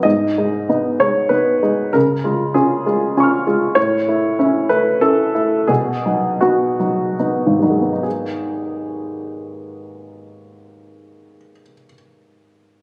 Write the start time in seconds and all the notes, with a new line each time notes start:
0.03 G#2 D#5
0.38 G#3 D#4
0.69 B3 D#4
1.00 G#3 D#4 C#5
1.29 B3 D#4 B4
1.62 G#3 D#4
1.93 C#3 A#4
2.24 G#3 F4
2.54 C#4 F4 G#4
2.86 G#3 F4
3.17 C#4 F4 G#5 C#6
3.23 F6
3.47 G#3 F4
3.75 A2 C#5
4.08 A3 E4
4.39 C#4 E4
4.69 A3 E4 B4
5.01 C#4 E4 A4
5.35 A3 E4
5.67 B2 G#4
6.05 F#3 D#4
6.41 B3 D#4 F#4
6.80 F#3 D#4
7.19 B3 D#4
7.46 G#1
7.59 D#2 F#3 D#4
7.70 G#3
7.82 B3
7.93 D#4
8.03 G#4